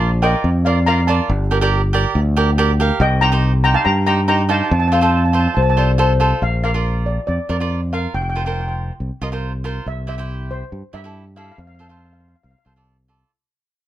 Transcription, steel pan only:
0.00 0.21 F5 medium
0.00 0.25 A5 loud
0.23 0.63 D#5 medium
0.23 0.67 G5 loud
0.65 0.86 D5 medium
0.65 0.87 F5 medium
0.86 0.98 F5 medium
0.86 0.96 A#5 medium
1.07 1.90 D5 medium
1.07 1.89 A5 medium
3.01 3.11 D#5 medium
3.01 3.10 G5 loud
3.21 3.62 G5 medium
3.21 3.63 A#5 loud
3.64 3.69 G5 medium
3.64 3.69 A#5 loud
3.74 3.85 F5 medium
3.74 3.85 A5 loud
3.85 4.05 G5 medium
3.85 4.05 A#5 loud
4.07 4.27 G5 medium
4.07 4.27 A#5 medium
4.28 4.39 G5 medium
4.28 4.38 A#5 loud
4.50 4.57 F5 medium
4.50 4.55 A5 loud
4.57 4.63 A5 medium
4.64 4.71 A5 medium
4.72 4.78 A5 medium
4.80 4.87 A5 medium
4.88 4.93 A5 medium
4.95 5.01 A5 medium
5.02 5.09 A5 medium
5.10 5.16 A5 medium
5.17 5.24 A5 medium
5.25 5.31 A5 medium
5.32 5.38 A5 medium
5.40 5.46 A5 medium
5.47 5.53 A5 medium
5.55 5.61 A5 medium
5.62 5.68 A5 medium
5.70 5.76 A5 medium
5.77 5.84 A5 medium
6.43 6.62 F5 medium
6.64 7.04 F5 medium
7.06 7.26 D5 medium
7.27 7.37 D5 medium
7.50 7.94 D5 medium
7.93 8.13 F5 medium
8.14 8.21 G5 medium
8.22 8.28 G5 medium
8.30 8.36 G5 medium
8.37 8.44 G5 medium
8.45 8.51 G5 medium
8.53 8.59 G5 medium
8.60 8.67 G5 medium
8.68 8.74 G5 medium
9.88 10.08 E5 medium
10.09 10.52 E5 medium
10.51 10.95 C5 medium
10.94 11.38 E5 medium
11.37 11.43 F5 medium
11.44 11.50 F5 medium
11.52 11.58 F5 medium
11.59 11.66 F5 medium
11.67 11.74 F5 medium
11.75 11.81 F5 medium
11.82 11.87 F5 medium
11.89 11.96 F5 soft
11.97 12.04 F5 medium
12.05 12.12 F5 medium
12.13 12.19 F5 medium
12.21 12.27 F5 soft
12.28 12.35 F5 medium
12.36 12.42 F5 soft
12.43 12.50 F5 medium
12.51 12.57 F5 medium
12.59 12.65 F5 medium
12.66 12.72 F5 medium

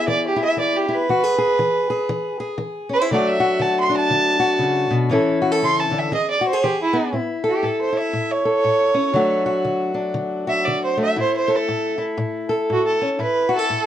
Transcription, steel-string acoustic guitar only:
0.00 1.06 B3 medium
0.00 0.35 E4 medium
0.00 1.06 G#4 medium
0.08 0.54 E3 medium
0.36 0.87 E4 medium
0.57 1.04 E3 medium
0.89 1.06 E4 medium
1.09 1.55 E3 medium
1.09 1.24 F#4 medium
1.24 1.37 G#4 medium
1.38 1.89 G#4 medium
1.59 2.05 E3 medium
1.90 2.39 G#4 medium
2.09 2.56 E3 medium
2.40 3.08 G#4 medium
2.58 3.05 E3 medium
2.89 3.01 C#4 medium
3.01 3.11 E4 medium
3.11 3.57 D3 medium
3.11 5.10 F#3 medium
3.11 5.11 A3 medium
3.11 3.88 D4 medium
3.11 3.39 F#4 medium
3.40 4.39 F#4 medium
3.59 4.06 D3 medium
3.90 5.08 D4 medium
4.10 4.57 D3 medium
4.40 5.11 F#4 medium
4.59 4.90 C#3 medium
4.91 5.11 B2 medium
5.10 5.57 A2 medium
5.10 6.10 E3 medium
5.10 6.10 C#4 medium
5.10 6.10 E4 medium
5.10 5.41 A4 medium
5.42 5.52 F#4 medium
5.52 6.12 A4 medium
5.62 5.91 C#3 medium
5.91 6.12 D3 medium
6.12 6.58 E3 medium
6.12 6.41 G#4 medium
6.41 6.53 F#4 medium
6.53 7.13 G#4 medium
6.64 7.10 E3 medium
6.93 7.11 B3 medium
7.13 7.59 A2 medium
7.13 7.91 E4 medium
7.44 8.44 A4 medium
7.63 8.10 A2 medium
7.92 9.12 E4 medium
8.13 8.60 A2 medium
8.45 9.15 A4 medium
8.64 9.11 A2 medium
8.94 9.12 C#4 medium
9.13 9.61 D3 medium
9.13 11.14 F#3 medium
9.13 10.97 A3 medium
9.13 9.93 D4 medium
9.13 9.45 F#4 medium
9.46 10.46 F#4 medium
9.64 10.12 D3 medium
9.94 11.14 D4 medium
10.14 10.62 D3 medium
10.47 11.18 F#4 medium
10.67 11.14 D3 medium
10.97 13.01 A3 medium
11.16 11.63 A2 medium
11.16 11.98 E4 medium
11.48 12.49 A4 medium
11.69 12.15 A2 medium
11.98 13.17 E4 medium
12.18 12.65 A2 medium
12.49 13.48 A4 medium
12.70 13.16 A2 medium
13.02 13.18 C#4 medium
13.19 13.66 A2 medium
13.19 13.86 E4 medium
13.49 13.59 F#4 medium
13.59 13.86 A4 medium
13.70 13.86 A2 medium

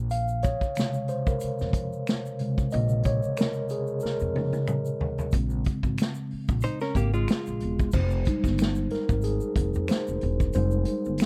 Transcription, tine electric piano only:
0.11 0.26 F5 loud
0.43 1.11 C#5 loud
0.77 1.22 C3 medium
0.77 1.21 C#3 medium
0.77 1.21 G#3 soft
1.09 1.25 C5 medium
1.27 2.36 A#4 medium
2.40 3.34 C3 medium
2.40 3.33 C#3 medium
2.40 3.34 G#3 medium
2.72 3.06 D#5 loud
3.05 3.35 C#5 loud
3.39 3.71 A#4 medium
3.71 3.85 G#4 medium
4.03 4.96 A#4 medium
5.34 5.78 C#3 medium
5.34 5.78 G#3 soft
5.34 5.78 C4 soft
7.93 8.87 C5 medium
8.27 8.71 G3 medium
8.27 8.71 G#3 medium
8.27 8.72 D#4 medium
8.91 9.25 A#4 medium
9.24 9.85 G#4 medium
9.89 10.36 C5 medium
10.55 10.99 G3 medium
10.55 11.00 G#3 soft
10.55 11.00 D#4 medium
10.55 11.26 C5 medium

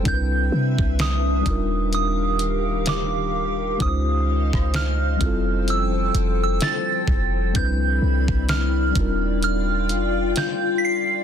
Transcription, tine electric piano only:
0.03 1.40 G3 medium
0.03 1.45 C4 medium
0.03 1.42 D4 medium
0.03 1.46 E4 medium
0.07 0.14 A#4 medium
0.14 1.50 B4 medium
1.41 3.74 G3 medium
1.41 3.75 D4 medium
1.45 3.76 D#4 medium
1.45 3.77 F4 medium
1.51 3.79 A#4 medium
3.78 5.20 G#3 medium
3.78 5.20 C#4 medium
3.78 5.21 D#4 medium
3.78 3.88 E4 medium
3.83 5.22 C5 medium
3.88 5.22 F4 medium
5.16 7.49 G3 medium
5.16 7.50 C4 medium
5.21 7.51 E4 medium
5.21 7.53 F4 medium
5.26 7.54 A4 medium
7.53 8.90 G3 medium
7.53 8.95 C4 medium
7.53 8.92 D4 medium
7.57 8.96 E4 medium
7.57 8.97 B4 medium
8.91 11.24 G3 medium
8.91 11.24 D4 medium
8.96 11.24 D#4 medium
8.96 11.24 F4 medium
9.01 11.24 A#4 medium

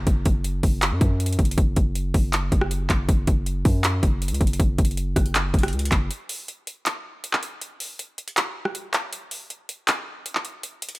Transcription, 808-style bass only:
0.07 0.25 F#1 loud
0.26 0.62 F#1 loud
0.63 0.93 F#1 loud
0.92 1.01 F#2 loud
1.01 1.37 F#2 loud
1.39 1.57 F#1 loud
1.58 1.76 F#1 loud
1.77 2.13 F#1 loud
2.14 2.51 F#1 loud
2.52 2.88 F#1 loud
2.90 3.08 F#1 loud
3.09 3.27 F#1 loud
3.27 3.64 F#1 loud
3.65 4.01 F#2 loud
4.03 4.33 F#1 loud
4.31 4.40 C#2 loud
4.41 4.59 F#1 loud
4.60 4.78 F#1 loud
4.79 5.15 F#1 loud
5.16 5.52 F#1 loud
5.54 5.74 F#1 loud
5.73 5.91 C#2 medium
5.92 6.10 F#1 loud

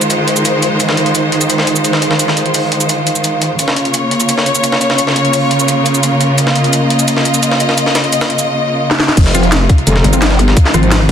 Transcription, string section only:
0.00 3.55 D#3 medium
0.00 3.55 G#3 medium
0.00 3.55 F4 medium
0.00 3.55 C5 medium
3.59 9.13 C#3 medium
3.59 9.13 A#3 medium
3.59 9.13 F4 medium
3.59 6.35 C#5 medium
6.38 9.14 D#5 medium
9.17 11.12 C3 medium
9.17 11.12 G#3 medium
9.17 11.12 D#4 medium
9.17 11.12 F4 medium

